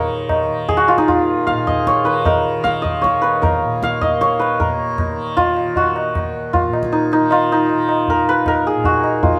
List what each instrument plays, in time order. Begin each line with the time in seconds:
Already playing: tanpura D#2 A#2 D#3, santur G#4 A#4 C#5 D#5 F5
0.29 tabla na, tabla ge
0.47 tanpura D#3
0.68 santur G#4, tabla tin, tabla ge
0.77 santur F#4
0.88 santur F4, tabla na
0.98 tanpura D#2, santur D#4, tabla ke
1.08 santur F4, tabla tin, tabla ge
1.47 santur F5, tabla ke
1.52 tanpura A#2
1.67 santur D#5, tabla tin, tabla ge
1.87 santur C#5, tabla ke
2.04 tanpura D#3, santur B4, tabla te
2.25 santur A#4, tabla na, tabla ge
2.57 tanpura D#3
2.64 santur F5, tabla ke
2.82 santur D#5, tabla tin, tabla ge
3.02 santur C#5, tabla ke
3.10 tanpura D#2
3.22 santur B4, tabla te
3.42 santur A#4, tabla na, tabla ge
3.64 tanpura A#2
3.83 santur F5, tabla ke
4.01 santur D#5, tabla tin, tabla ge
4.15 tanpura D#3
4.21 santur C#5, tabla ke
4.39 santur B4, tabla te
4.60 tanpura A#2, santur A#4, tabla tin, tabla ge
4.98 tabla na, tabla ge
5.11 tanpura D#3
5.37 santur F4, tabla tin, tabla ge
5.57 tabla na
5.65 tanpura D#3
5.76 santur F#4, tabla tin, tabla ge
5.96 tabla na
6.15 tanpura D#2, tabla na, tabla ge
6.53 santur F4, tabla tin, tabla ge
6.68 tanpura A#2
6.73 tabla na
6.83 tabla ke
6.92 santur D#4, tabla tin
7.12 santur D#4, tabla na
7.20 tanpura D#3
7.31 santur F4, tabla na
7.52 santur D#4
7.69 tanpura D#3, tabla tin
7.89 tabla na
8.08 santur A#4, tabla tin, tabla ge
8.24 tanpura D#2
8.29 santur B4
8.46 santur A#4, tabla na, tabla ge
8.67 santur G#4
8.74 tanpura A#2
8.84 santur F#4, tabla tin, tabla ge
9.04 tabla na
9.23 tanpura D#3, santur F4, tabla tin, tabla ge